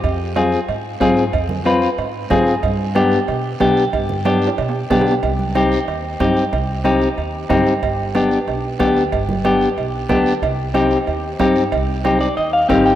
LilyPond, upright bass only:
\new Staff \with { instrumentName = "Upright bass" } { \clef bass \time 4/4 \key c \minor \tempo 4 = 185 f,2 aes,4 aes,4 | f,2 aes,4 aes,4 | g,2 b,4 b,4 | g,2 b,4 b,4 |
c,2 ees,4 g,4 | c,2 ees,4 g,4 | g,,2 b,,4 d,4 | g,,2 b,,4 d,4 |
c,2 ees,4 g,4 | c,2 ees,4 aes,,4 | }